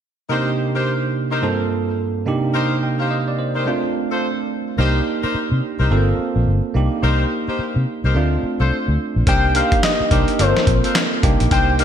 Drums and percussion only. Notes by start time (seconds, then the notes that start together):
9.27 kick, closed hi-hat
9.55 closed hi-hat
9.72 kick, closed hi-hat
9.83 snare, clap, closed hi-hat
10.11 kick, closed hi-hat
10.28 closed hi-hat
10.39 closed hi-hat
10.57 snare
10.67 kick, closed hi-hat
10.84 closed hi-hat
10.95 snare, clap, closed hi-hat
11.23 kick, closed hi-hat
11.40 closed hi-hat
11.51 kick, closed hi-hat
11.79 closed hi-hat